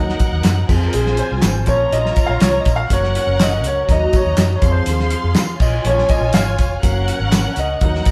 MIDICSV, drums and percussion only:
0, 0, Header, 1, 2, 480
1, 0, Start_track
1, 0, Tempo, 490998
1, 1879, Time_signature, 4, 2, 24, 8
1, 7932, End_track
2, 0, Start_track
2, 0, Title_t, "Drums"
2, 86, Note_on_c, 9, 38, 31
2, 184, Note_off_c, 9, 38, 0
2, 191, Note_on_c, 9, 42, 61
2, 191, Note_on_c, 9, 54, 52
2, 197, Note_on_c, 9, 36, 99
2, 289, Note_off_c, 9, 42, 0
2, 289, Note_off_c, 9, 54, 0
2, 295, Note_off_c, 9, 36, 0
2, 424, Note_on_c, 9, 42, 91
2, 436, Note_on_c, 9, 38, 94
2, 438, Note_on_c, 9, 39, 89
2, 438, Note_on_c, 9, 54, 91
2, 522, Note_off_c, 9, 42, 0
2, 533, Note_off_c, 9, 38, 0
2, 536, Note_off_c, 9, 39, 0
2, 536, Note_off_c, 9, 54, 0
2, 675, Note_on_c, 9, 36, 104
2, 675, Note_on_c, 9, 49, 77
2, 681, Note_on_c, 9, 54, 49
2, 772, Note_off_c, 9, 49, 0
2, 773, Note_off_c, 9, 36, 0
2, 779, Note_off_c, 9, 54, 0
2, 908, Note_on_c, 9, 42, 98
2, 912, Note_on_c, 9, 54, 51
2, 1006, Note_off_c, 9, 42, 0
2, 1010, Note_off_c, 9, 54, 0
2, 1036, Note_on_c, 9, 38, 32
2, 1134, Note_off_c, 9, 38, 0
2, 1146, Note_on_c, 9, 42, 80
2, 1153, Note_on_c, 9, 54, 31
2, 1243, Note_off_c, 9, 42, 0
2, 1251, Note_off_c, 9, 54, 0
2, 1388, Note_on_c, 9, 42, 84
2, 1390, Note_on_c, 9, 38, 97
2, 1392, Note_on_c, 9, 39, 90
2, 1392, Note_on_c, 9, 54, 99
2, 1486, Note_off_c, 9, 42, 0
2, 1488, Note_off_c, 9, 38, 0
2, 1490, Note_off_c, 9, 39, 0
2, 1490, Note_off_c, 9, 54, 0
2, 1624, Note_on_c, 9, 42, 65
2, 1635, Note_on_c, 9, 36, 92
2, 1640, Note_on_c, 9, 54, 60
2, 1721, Note_off_c, 9, 42, 0
2, 1732, Note_off_c, 9, 36, 0
2, 1738, Note_off_c, 9, 54, 0
2, 1882, Note_on_c, 9, 42, 81
2, 1893, Note_on_c, 9, 54, 33
2, 1980, Note_off_c, 9, 42, 0
2, 1991, Note_off_c, 9, 54, 0
2, 2010, Note_on_c, 9, 38, 31
2, 2108, Note_off_c, 9, 38, 0
2, 2111, Note_on_c, 9, 42, 64
2, 2118, Note_on_c, 9, 36, 101
2, 2125, Note_on_c, 9, 54, 55
2, 2209, Note_off_c, 9, 42, 0
2, 2216, Note_off_c, 9, 36, 0
2, 2222, Note_off_c, 9, 54, 0
2, 2350, Note_on_c, 9, 42, 93
2, 2362, Note_on_c, 9, 38, 107
2, 2369, Note_on_c, 9, 39, 98
2, 2369, Note_on_c, 9, 54, 90
2, 2448, Note_off_c, 9, 42, 0
2, 2459, Note_off_c, 9, 38, 0
2, 2467, Note_off_c, 9, 39, 0
2, 2467, Note_off_c, 9, 54, 0
2, 2595, Note_on_c, 9, 42, 77
2, 2601, Note_on_c, 9, 36, 100
2, 2615, Note_on_c, 9, 54, 50
2, 2692, Note_off_c, 9, 42, 0
2, 2699, Note_off_c, 9, 36, 0
2, 2713, Note_off_c, 9, 54, 0
2, 2838, Note_on_c, 9, 42, 101
2, 2839, Note_on_c, 9, 36, 78
2, 2848, Note_on_c, 9, 54, 53
2, 2936, Note_off_c, 9, 36, 0
2, 2936, Note_off_c, 9, 42, 0
2, 2946, Note_off_c, 9, 54, 0
2, 2966, Note_on_c, 9, 38, 31
2, 3064, Note_off_c, 9, 38, 0
2, 3081, Note_on_c, 9, 42, 82
2, 3179, Note_off_c, 9, 42, 0
2, 3320, Note_on_c, 9, 42, 91
2, 3322, Note_on_c, 9, 38, 96
2, 3328, Note_on_c, 9, 39, 93
2, 3328, Note_on_c, 9, 54, 91
2, 3417, Note_off_c, 9, 42, 0
2, 3420, Note_off_c, 9, 38, 0
2, 3425, Note_off_c, 9, 39, 0
2, 3425, Note_off_c, 9, 54, 0
2, 3558, Note_on_c, 9, 42, 68
2, 3561, Note_on_c, 9, 54, 58
2, 3656, Note_off_c, 9, 42, 0
2, 3658, Note_off_c, 9, 54, 0
2, 3800, Note_on_c, 9, 36, 103
2, 3804, Note_on_c, 9, 42, 81
2, 3815, Note_on_c, 9, 54, 33
2, 3897, Note_off_c, 9, 36, 0
2, 3902, Note_off_c, 9, 42, 0
2, 3913, Note_off_c, 9, 54, 0
2, 4037, Note_on_c, 9, 42, 65
2, 4043, Note_on_c, 9, 36, 103
2, 4043, Note_on_c, 9, 54, 54
2, 4135, Note_off_c, 9, 42, 0
2, 4140, Note_off_c, 9, 36, 0
2, 4141, Note_off_c, 9, 54, 0
2, 4270, Note_on_c, 9, 42, 99
2, 4280, Note_on_c, 9, 39, 98
2, 4280, Note_on_c, 9, 54, 91
2, 4282, Note_on_c, 9, 38, 94
2, 4368, Note_off_c, 9, 42, 0
2, 4378, Note_off_c, 9, 39, 0
2, 4378, Note_off_c, 9, 54, 0
2, 4380, Note_off_c, 9, 38, 0
2, 4515, Note_on_c, 9, 42, 77
2, 4518, Note_on_c, 9, 36, 112
2, 4529, Note_on_c, 9, 54, 50
2, 4613, Note_off_c, 9, 42, 0
2, 4616, Note_off_c, 9, 36, 0
2, 4627, Note_off_c, 9, 54, 0
2, 4752, Note_on_c, 9, 42, 94
2, 4758, Note_on_c, 9, 54, 51
2, 4849, Note_off_c, 9, 42, 0
2, 4856, Note_off_c, 9, 54, 0
2, 4882, Note_on_c, 9, 38, 35
2, 4980, Note_off_c, 9, 38, 0
2, 4991, Note_on_c, 9, 42, 82
2, 5088, Note_off_c, 9, 42, 0
2, 5227, Note_on_c, 9, 42, 82
2, 5229, Note_on_c, 9, 38, 100
2, 5242, Note_on_c, 9, 39, 91
2, 5242, Note_on_c, 9, 54, 97
2, 5324, Note_off_c, 9, 42, 0
2, 5327, Note_off_c, 9, 38, 0
2, 5340, Note_off_c, 9, 39, 0
2, 5340, Note_off_c, 9, 54, 0
2, 5472, Note_on_c, 9, 49, 69
2, 5476, Note_on_c, 9, 36, 99
2, 5492, Note_on_c, 9, 54, 63
2, 5569, Note_off_c, 9, 49, 0
2, 5574, Note_off_c, 9, 36, 0
2, 5590, Note_off_c, 9, 54, 0
2, 5716, Note_on_c, 9, 42, 82
2, 5735, Note_on_c, 9, 54, 35
2, 5814, Note_off_c, 9, 42, 0
2, 5832, Note_off_c, 9, 54, 0
2, 5849, Note_on_c, 9, 38, 33
2, 5947, Note_off_c, 9, 38, 0
2, 5950, Note_on_c, 9, 42, 63
2, 5960, Note_on_c, 9, 36, 100
2, 5971, Note_on_c, 9, 54, 48
2, 6048, Note_off_c, 9, 42, 0
2, 6057, Note_off_c, 9, 36, 0
2, 6068, Note_off_c, 9, 54, 0
2, 6185, Note_on_c, 9, 42, 96
2, 6197, Note_on_c, 9, 38, 103
2, 6205, Note_on_c, 9, 39, 95
2, 6205, Note_on_c, 9, 54, 89
2, 6283, Note_off_c, 9, 42, 0
2, 6295, Note_off_c, 9, 38, 0
2, 6302, Note_off_c, 9, 39, 0
2, 6302, Note_off_c, 9, 54, 0
2, 6438, Note_on_c, 9, 42, 87
2, 6441, Note_on_c, 9, 36, 95
2, 6459, Note_on_c, 9, 54, 50
2, 6535, Note_off_c, 9, 42, 0
2, 6539, Note_off_c, 9, 36, 0
2, 6557, Note_off_c, 9, 54, 0
2, 6680, Note_on_c, 9, 36, 84
2, 6680, Note_on_c, 9, 42, 98
2, 6688, Note_on_c, 9, 54, 54
2, 6777, Note_off_c, 9, 42, 0
2, 6778, Note_off_c, 9, 36, 0
2, 6786, Note_off_c, 9, 54, 0
2, 6921, Note_on_c, 9, 42, 81
2, 6922, Note_on_c, 9, 54, 31
2, 7018, Note_off_c, 9, 42, 0
2, 7020, Note_off_c, 9, 54, 0
2, 7156, Note_on_c, 9, 42, 90
2, 7158, Note_on_c, 9, 38, 96
2, 7160, Note_on_c, 9, 39, 93
2, 7160, Note_on_c, 9, 54, 91
2, 7254, Note_off_c, 9, 42, 0
2, 7256, Note_off_c, 9, 38, 0
2, 7257, Note_off_c, 9, 39, 0
2, 7257, Note_off_c, 9, 54, 0
2, 7391, Note_on_c, 9, 42, 73
2, 7400, Note_on_c, 9, 54, 60
2, 7489, Note_off_c, 9, 42, 0
2, 7498, Note_off_c, 9, 54, 0
2, 7635, Note_on_c, 9, 42, 78
2, 7640, Note_on_c, 9, 36, 102
2, 7733, Note_off_c, 9, 42, 0
2, 7738, Note_off_c, 9, 36, 0
2, 7772, Note_on_c, 9, 38, 36
2, 7870, Note_off_c, 9, 38, 0
2, 7874, Note_on_c, 9, 42, 68
2, 7882, Note_on_c, 9, 36, 103
2, 7882, Note_on_c, 9, 54, 55
2, 7932, Note_off_c, 9, 36, 0
2, 7932, Note_off_c, 9, 42, 0
2, 7932, Note_off_c, 9, 54, 0
2, 7932, End_track
0, 0, End_of_file